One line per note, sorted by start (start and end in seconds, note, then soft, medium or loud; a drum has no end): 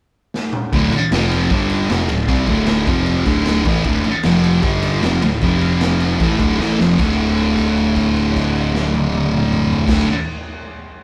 0.34 snare medium
0.53 mid tom loud
0.72 0.91 D1 medium
0.72 0.91 D2 medium
0.72 0.92 A2 loud
0.72 0.93 D3 loud
0.72 kick loud
0.72 ride medium
0.92 muted picked electric bass stroke soft
0.92 muted distorted electric guitar stroke medium
0.92 ride medium
1.11 1.48 F1 loud
1.11 1.50 F2 loud
1.11 1.51 C3 loud
1.11 1.51 F3 loud
1.11 snare loud
1.11 ride loud
1.31 ride medium
1.50 1.87 G1 loud
1.50 1.89 G2 medium
1.50 1.90 D3 medium
1.50 1.90 G3 medium
1.50 kick loud
1.50 ride loud
1.70 ride medium
1.88 2.07 F1 medium
1.88 2.09 F2 loud
1.88 2.09 C3 loud
1.88 2.09 F3 loud
1.88 snare loud
1.88 ride loud
2.08 2.27 D1 medium
2.08 2.25 D2 medium
2.08 2.25 A2 medium
2.08 ride medium
2.28 2.46 C2 loud
2.28 2.47 C3 loud
2.28 2.48 G3 loud
2.28 2.48 C4 loud
2.28 kick loud
2.28 ride loud
2.47 2.84 D1 medium
2.47 2.86 D2 medium
2.47 2.87 A2 medium
2.47 2.87 D3 loud
2.47 kick loud
2.47 ride medium
2.66 snare loud
2.66 ride loud
2.87 3.23 F1 loud
2.87 3.26 F2 medium
2.87 3.26 C3 medium
2.87 3.27 F3 medium
2.87 kick loud
2.87 ride medium
3.06 ride medium
3.26 3.62 D1 loud
3.26 3.65 D2 loud
3.26 3.65 A2 loud
3.26 3.65 D3 loud
3.26 kick loud
3.26 ride medium
3.45 snare loud
3.45 ride medium
3.65 3.84 A1 medium
3.65 3.85 A2 loud
3.65 3.85 E3 loud
3.65 3.85 A3 loud
3.65 kick loud
3.65 ride medium
3.84 4.03 D1 loud
3.84 4.05 D2 loud
3.84 4.05 A2 loud
3.84 4.05 D3 loud
3.84 kick medium
3.84 ride loud
4.04 muted picked electric bass stroke soft
4.04 muted distorted electric guitar stroke medium
4.04 ride medium
4.23 4.60 F1 medium
4.23 4.64 F2 loud
4.23 4.64 C3 loud
4.23 4.65 F3 loud
4.23 snare loud
4.23 ride loud
4.44 ride medium
4.63 5.00 G1 loud
4.63 5.02 G2 medium
4.63 5.02 D3 medium
4.63 5.03 G3 medium
4.63 kick loud
4.63 ride loud
4.82 ride medium
5.02 5.21 F1 loud
5.02 5.22 F2 loud
5.02 5.22 C3 loud
5.02 5.22 F3 loud
5.02 snare loud
5.02 ride medium
5.22 5.41 D1 medium
5.22 5.38 D2 medium
5.22 5.38 A2 medium
5.22 ride medium
5.41 6.16 F1 medium
5.41 6.20 F2 medium
5.41 6.21 C3 loud
5.41 6.21 F3 loud
5.41 kick loud
5.41 ride loud
5.61 ride medium
5.81 snare loud
5.81 ride loud
6.00 ride medium
6.20 6.39 A1 loud
6.20 6.39 A2 medium
6.20 6.40 E3 medium
6.20 6.40 A3 medium
6.20 kick loud
6.20 ride loud
6.40 6.58 D1 loud
6.40 6.59 D2 loud
6.40 6.59 A2 loud
6.40 6.60 D3 loud
6.40 kick loud
6.40 ride medium
6.60 6.78 A1 loud
6.60 6.79 A2 medium
6.60 6.79 E3 medium
6.60 6.80 A3 loud
6.60 snare medium
6.79 6.97 F1 medium
6.79 6.97 F2 loud
6.79 6.99 C3 loud
6.79 6.99 F3 loud
6.79 snare medium
6.98 9.79 D1 loud
6.98 9.86 D2 loud
6.98 9.88 A2 medium
6.98 kick loud
6.98 crash medium
7.02 9.90 D3 loud
7.18 kick soft
7.18 crash soft
7.37 crash medium
7.57 kick medium
7.57 crash medium
7.77 crash soft
7.96 kick medium
7.96 crash medium
8.16 crash soft
8.36 kick medium
8.36 crash medium
8.56 crash soft
8.75 snare medium
8.94 high tom loud
9.14 high tom loud
9.33 mid tom loud
9.53 mid tom loud
9.73 floor tom loud
9.86 10.04 D1 medium
9.86 10.04 D2 medium
9.86 10.06 A2 medium
9.86 kick loud
9.86 snare loud
9.86 crash loud
9.90 10.07 D3 loud